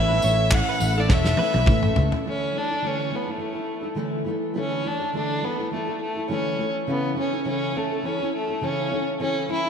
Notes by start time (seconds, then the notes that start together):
Already playing: A1 A2 E3 A3 C#4 E4 A4 B4 C#5 E5
0.10 A3 C#4 E4 A4
0.22 A1 A3 C#4 E4 C#5, tambourine
0.27 A4
0.50 A2 E3 A3 C#4 E4 A4 F#5, kick, clap
0.69 B4
0.80 A1 A3 C#4 E4 A4, tambourine
0.95 A3 C#4 E4 A4
1.00 D5
1.07 E1 E4 A4 C#5, kick, snare
1.12 E5
1.24 A3 C#4 E4 A4, snare
1.37 A3 C#4 E4 A4 B4, muted fingered electric bass stroke, high tom
1.53 B1 A3 C#4 E4 A4, high tom
1.66 A1 A2 E3 A3 C#4 E4 A4, kick, mid tom
1.83 mid tom
1.95 C#2 A3 C#4 E4, floor tom
1.99 A4
2.12 floor tom
2.25 D3 E3 A3 C#4 E4 A4
2.53 E3 A3 E4
2.57 D4 A4
2.69 A3 E4 A4
2.82 D3 E3 A3 E4 A4
2.87 C#4
3.11 E3 A3 E4 A4
3.15 B3
3.26 A3 E4 A4
3.32 A3
3.37 E3 A3 E4 A4
3.53 A3 E4 A4
3.81 A3 E4 A4
3.95 D3 E3 A3 E4 A4
4.25 E3 A3 E4 A4
4.54 D3 E3 A3 E4 A4
4.59 C#4
4.83 E3 A3 D4 E4 A4
4.99 A3 E4 A4
5.13 D3 E3 A3 D4 E4 A4
5.41 E3 A3 B3 E4 A4
5.58 A3 E4 A4
5.71 E3 A3 E4 A4
5.87 A3 E4 A4
6.01 A3
6.15 A3 E4 A4
6.28 D3 E3 A3 C#4 E4 A4
6.57 E3 A3 E4 A4
6.87 C#3 E3 B3 C#4 E4 A4
7.15 E3 C#4 E4 A4
7.19 C#4
7.31 C#4 E4 A4
7.45 C#3 E3 C#4 E4 A4
7.74 E3 A3 C#4 E4 A4
7.90 C#4 E4 A4
8.03 E3 C#4 E4 A4
8.20 C#4 E4 A4
8.35 A3
8.48 C#4 E4 A4
8.61 C#3 E3 C#4 E4 A4
8.90 E3 C#4 E4 A4
9.19 C#3 E3 C#4 E4 A4
9.48 E3 C#4 E4 A4
9.64 E4 A4